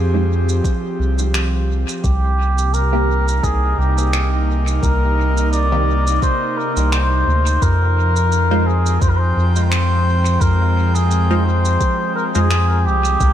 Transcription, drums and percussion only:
0.49 shaker
0.64 kick, shaker
1.19 shaker
1.34 finger snap, shaker
1.89 shaker
2.04 kick, shaker
2.58 shaker
2.74 shaker
3.28 shaker
3.43 kick, shaker
3.98 shaker
4.13 finger snap, shaker
4.68 shaker
4.83 kick, shaker
5.37 shaker
5.53 shaker
6.07 shaker
6.22 kick, shaker
6.77 shaker
6.92 finger snap, shaker
7.47 shaker
7.62 kick, shaker
8.16 shaker
8.32 shaker
8.86 shaker
9.02 kick, shaker
9.56 shaker
9.72 finger snap, shaker
10.26 shaker
10.41 kick, shaker
10.96 shaker
11.11 shaker
11.65 shaker
11.81 kick, shaker
12.35 shaker
12.51 finger snap, shaker
13.05 shaker
13.20 kick, shaker

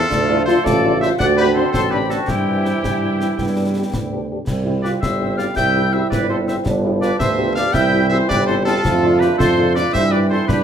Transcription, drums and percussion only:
0.11 concert bass drum, snare, crash
0.48 snare
0.66 concert bass drum, snare
1.03 snare
1.20 concert bass drum, snare
1.74 concert bass drum, snare
2.10 snare
2.28 concert bass drum, snare
2.65 snare
2.84 concert bass drum, snare
3.21 snare
3.38 concert bass drum, snare
3.94 concert bass drum, snare
4.47 concert bass drum, snare, crash
4.85 snare
5.03 concert bass drum, snare
5.39 snare
5.57 concert bass drum, snare
6.12 concert bass drum, snare
6.48 snare
6.66 concert bass drum, snare
7.02 snare
7.20 concert bass drum, snare
7.56 snare
7.74 concert bass drum, snare
8.30 concert bass drum, snare
8.67 snare
8.85 concert bass drum, snare, crash
9.21 snare
9.40 concert bass drum, snare
9.76 snare
9.95 concert bass drum, snare
10.49 concert bass drum, snare

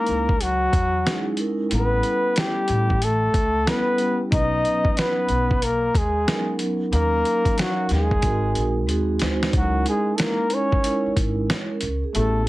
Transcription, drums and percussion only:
0.06 closed hi-hat
0.29 kick
0.41 closed hi-hat
0.73 kick, closed hi-hat
1.07 snare, closed hi-hat
1.37 closed hi-hat
1.71 closed hi-hat
2.03 closed hi-hat
2.36 snare, closed hi-hat
2.68 closed hi-hat
2.90 kick
3.02 closed hi-hat
3.34 kick, closed hi-hat
3.67 snare, closed hi-hat
3.98 closed hi-hat
4.32 kick, closed hi-hat
4.65 closed hi-hat
4.85 kick
4.97 snare, closed hi-hat
5.29 closed hi-hat
5.51 kick
5.62 closed hi-hat
5.95 kick, closed hi-hat
6.28 snare, closed hi-hat
6.59 closed hi-hat
6.93 closed hi-hat
7.25 closed hi-hat
7.45 kick, closed hi-hat
7.58 snare, closed hi-hat
7.89 snare, closed hi-hat
8.11 kick
8.22 kick, closed hi-hat
8.55 closed hi-hat
8.89 closed hi-hat
9.19 snare, closed hi-hat
9.43 snare
9.53 kick, closed hi-hat
9.86 closed hi-hat
10.18 snare, closed hi-hat
10.50 closed hi-hat
10.72 kick
10.84 closed hi-hat
11.16 kick, closed hi-hat
11.50 snare, closed hi-hat
11.81 closed hi-hat
12.15 closed hi-hat

